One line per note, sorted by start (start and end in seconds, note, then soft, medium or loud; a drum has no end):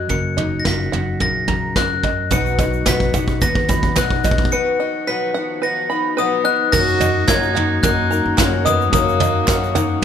0.00 0.93 F#3 medium
0.00 0.67 F#4 medium
0.00 0.36 D#5 medium
0.00 0.38 A#5 medium
0.00 0.12 F#6 medium
0.09 0.62 F#1 medium
0.09 2.31 F#2 medium
0.09 0.63 A#4 medium
0.09 0.60 C#7 medium
0.09 kick medium
0.09 floor tom medium
0.37 2.29 D#4 medium
0.37 1.48 D#5 medium
0.37 floor tom medium
0.60 0.66 A#6 medium
0.65 0.91 F#1 medium
0.65 1.76 F#4 medium
0.65 1.19 A#4 medium
0.65 1.23 B6 medium
0.65 kick medium
0.65 snare loud
0.65 floor tom medium
0.92 1.19 F#1 medium
0.92 2.03 F#3 medium
0.92 1.47 F#5 medium
0.92 floor tom medium
1.20 1.72 A#1 medium
1.20 2.04 C#3 medium
1.20 1.75 A#4 medium
1.20 1.73 A#6 medium
1.20 kick medium
1.20 floor tom medium
1.48 2.29 A#4 medium
1.48 2.31 A#5 medium
1.48 kick medium
1.48 floor tom medium
1.76 2.27 F#2 medium
1.76 2.29 F#4 medium
1.76 2.31 A#4 medium
1.76 2.33 F#6 medium
1.76 kick medium
1.76 snare medium
1.76 floor tom medium
2.03 4.53 F#3 medium
2.03 2.31 D#5 medium
2.03 kick medium
2.03 floor tom medium
2.31 2.83 B1 loud
2.31 2.59 B2 medium
2.31 6.69 D#3 medium
2.31 2.59 F#3 medium
2.31 6.69 B3 medium
2.31 2.59 B3 medium
2.31 2.59 D#4 medium
2.31 4.50 F#4 medium
2.31 2.58 F#4 medium
2.31 2.85 B4 medium
2.31 2.89 C#7 medium
2.31 kick medium
2.31 floor tom medium
2.31 shaker medium
2.46 shaker soft
2.59 2.86 B3 soft
2.59 2.87 D#4 medium
2.59 2.86 F#4 medium
2.59 3.69 D#5 medium
2.59 kick medium
2.59 floor tom medium
2.59 shaker medium
2.73 shaker soft
2.86 3.12 B1 loud
2.86 3.14 B2 medium
2.86 3.15 F#3 medium
2.86 3.15 B3 medium
2.86 3.14 D#4 medium
2.86 3.12 F#4 medium
2.86 3.40 B4 medium
2.86 3.44 B6 medium
2.86 kick medium
2.86 snare loud
2.86 clap medium
2.86 floor tom medium
2.86 shaker medium
3.00 kick medium
3.13 3.40 B1 medium
3.13 3.41 B3 soft
3.13 3.42 D#4 soft
3.13 3.41 F#4 medium
3.13 3.69 F#5 medium
3.13 kick medium
3.13 floor tom medium
3.13 shaker medium
3.28 kick medium
3.28 shaker soft
3.41 3.93 D#2 medium
3.41 3.69 F#3 medium
3.41 3.70 B3 medium
3.41 3.69 D#4 medium
3.41 3.67 F#4 medium
3.41 3.95 B4 medium
3.41 3.99 A#6 medium
3.41 kick medium
3.41 floor tom medium
3.41 shaker medium
3.55 kick loud
3.68 3.95 B3 soft
3.68 3.96 D#4 soft
3.68 3.96 F#4 medium
3.68 4.80 B5 medium
3.68 kick loud
3.68 floor tom medium
3.68 shaker medium
3.83 kick loud
3.83 shaker soft
3.96 4.24 B2 medium
3.96 4.48 B2 medium
3.96 4.24 F#3 medium
3.96 4.24 B3 medium
3.96 4.24 D#4 medium
3.96 4.23 F#4 medium
3.96 4.51 B4 medium
3.96 4.49 F#6 medium
3.96 kick medium
3.96 snare loud
3.96 clap medium
3.96 floor tom medium
3.96 shaker medium
4.10 kick loud
4.24 4.52 B3 soft
4.24 4.52 D#4 soft
4.24 4.52 F#4 medium
4.24 4.78 D#5 medium
4.24 kick medium
4.24 floor tom medium
4.24 shaker medium
4.31 kick loud
4.38 kick loud
4.45 kick loud
4.50 4.79 B2 medium
4.50 6.70 F3 medium
4.50 4.80 F#3 medium
4.50 4.80 B3 medium
4.50 4.80 D#4 medium
4.50 4.79 F#4 medium
4.50 5.06 B4 medium
4.50 5.04 C#7 medium
4.80 5.07 B3 soft
4.80 5.08 D#4 medium
4.80 5.07 F#4 medium
4.80 5.90 D#5 medium
5.07 5.35 B2 medium
5.07 5.35 F#3 medium
5.07 5.35 B3 medium
5.07 5.35 D#4 medium
5.07 5.34 F#4 medium
5.07 5.60 B4 medium
5.07 5.64 B6 medium
5.34 5.63 B3 soft
5.34 5.63 D#4 soft
5.34 5.63 F#4 medium
5.34 6.45 F#5 medium
5.62 5.90 F#3 medium
5.62 5.91 B3 medium
5.62 5.90 D#4 medium
5.62 5.89 F#4 medium
5.62 6.16 B4 medium
5.62 6.14 A#6 medium
5.90 6.18 B3 soft
5.90 6.18 D#4 medium
5.90 6.18 F#4 medium
5.90 6.73 B5 medium
6.17 6.46 B2 medium
6.17 6.46 F#3 medium
6.17 6.46 B3 medium
6.17 6.70 B3 medium
6.17 6.45 D#4 medium
6.17 6.43 F#4 loud
6.17 6.72 B4 medium
6.17 6.75 D#6 medium
6.44 6.74 B3 medium
6.44 6.73 D#4 soft
6.44 6.73 F#4 medium
6.44 6.73 D#5 medium
6.44 6.71 F#6 loud
6.71 7.00 F#2 medium
6.71 7.25 F#2 loud
6.71 7.01 C#3 medium
6.71 10.04 D#3 medium
6.71 7.01 F#3 medium
6.71 10.04 A#3 medium
6.71 7.01 A#3 medium
6.71 7.01 D#4 loud
6.71 10.04 F#4 medium
6.71 7.25 F#4 loud
6.71 7.27 A#4 loud
6.71 7.29 A#6 loud
6.71 kick loud
6.71 floor tom loud
6.71 crash loud
6.71 shaker medium
6.75 7.00 F#4 medium
6.88 shaker soft
7.00 7.28 F#3 medium
7.00 7.28 A#3 medium
7.00 7.28 D#4 medium
7.00 7.29 F#4 medium
7.00 8.11 D#5 medium
7.00 floor tom loud
7.00 shaker medium
7.28 7.56 F#2 medium
7.28 7.80 F#2 loud
7.28 7.56 C#3 medium
7.28 7.56 F#3 medium
7.28 7.56 A#3 medium
7.28 7.80 D#4 medium
7.28 7.56 D#4 medium
7.28 7.54 F#4 medium
7.28 7.82 A#4 medium
7.28 7.85 G#6 loud
7.28 kick loud
7.28 snare loud
7.28 clap loud
7.28 shaker medium
7.43 shaker soft
7.55 7.82 F#3 soft
7.55 7.83 A#3 soft
7.55 7.84 D#4 medium
7.55 7.83 F#4 medium
7.55 8.66 F#5 loud
7.55 floor tom medium
7.83 8.22 F#2 loud
7.83 8.11 F#3 medium
7.83 8.11 A#3 medium
7.83 8.34 D#4 medium
7.83 8.10 D#4 medium
7.83 8.09 F#4 medium
7.83 8.36 A#4 medium
7.83 8.34 F#6 medium
7.83 kick loud
7.83 floor tom loud
7.83 shaker medium
8.11 8.38 F#3 medium
8.11 8.38 A#3 medium
8.11 8.39 D#4 medium
8.11 8.38 F#4 medium
8.11 9.21 A#5 medium
8.11 shaker medium
8.25 8.38 F#2 medium
8.37 8.66 F#2 medium
8.37 8.90 F#2 loud
8.37 8.66 C#3 medium
8.37 8.66 F#3 loud
8.37 8.67 A#3 loud
8.37 8.66 D#4 medium
8.37 8.65 F#4 medium
8.37 8.91 A#4 medium
8.37 kick loud
8.37 snare loud
8.37 clap loud
8.37 shaker medium
8.65 8.94 F#3 soft
8.65 8.94 A#3 soft
8.65 8.92 B3 medium
8.65 8.94 D#4 medium
8.65 8.94 F#4 medium
8.65 9.19 D#5 medium
8.65 8.91 D#6 loud
8.65 floor tom medium
8.65 shaker medium
8.81 shaker soft
8.92 9.45 F#2 loud
8.92 9.21 F#2 medium
8.92 9.22 C#3 medium
8.92 9.22 F#3 medium
8.92 9.99 A#3 loud
8.92 9.21 A#3 medium
8.92 9.21 D#4 medium
8.92 9.19 F#4 medium
8.92 9.47 A#4 medium
8.92 10.00 D#6 loud
8.92 kick loud
8.92 floor tom loud
8.92 shaker medium
9.09 shaker soft
9.20 9.48 F#3 medium
9.20 9.48 A#3 medium
9.20 9.48 D#4 medium
9.20 9.48 F#4 medium
9.20 10.04 D#5 medium
9.20 floor tom medium
9.20 shaker medium
9.48 9.76 F#2 medium
9.48 10.00 F#2 loud
9.48 9.76 C#3 medium
9.48 9.76 F#3 medium
9.48 9.76 A#3 medium
9.48 9.75 D#4 medium
9.48 9.74 F#4 medium
9.48 10.01 A#4 medium
9.48 kick loud
9.48 snare loud
9.48 clap loud
9.48 shaker medium
9.64 shaker soft
9.75 10.01 F#3 medium
9.75 10.02 A#3 medium
9.75 10.03 D#4 medium
9.75 10.03 F#4 medium
9.75 10.04 F#5 loud
9.75 floor tom loud
9.75 shaker medium